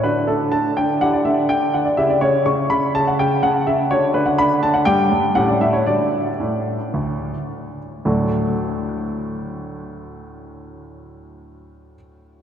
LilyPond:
<<
  \new Staff \with { instrumentName = "Grand piano" } { \time 4/4 \key d \major \tempo 4 = 114 << { b'8 a'8 a''8 g''8 fis''16 d''16 e''8 g''8 fis''16 d''16 | e''16 d''16 cis''8 cis'''8 b''8 a''16 fis''16 g''8 fis''8 e''8 | cis''8 b'16 fis''16 b''8 a''16 fis''16 g''4 fis''16 d''16 e''16 cis''16 | d''2.~ d''8 r8 |
<d, a, fis a d' fis'>1~ | <d, a, fis a d' fis'>1 | } \\ { <d' fis'>2 <e' g'>2 | <e' g'>1 | <d' fis'>2 <d' g'>4 <cis' g'>4 | r1 |
r1 | r1 | } >> }
  \new Staff \with { instrumentName = "Grand piano" } { \clef bass \time 4/4 \key d \major d8 d8 d8 d8 d8 d8 d8 d8 | cis8 cis8 cis8 cis8 cis8 cis8 cis8 cis8 | d8 d8 d8 d8 g,8 g,8 a,8 a,8 | <d d' fis'>4 a,4 d,4 r4 |
r1 | r1 | }
>>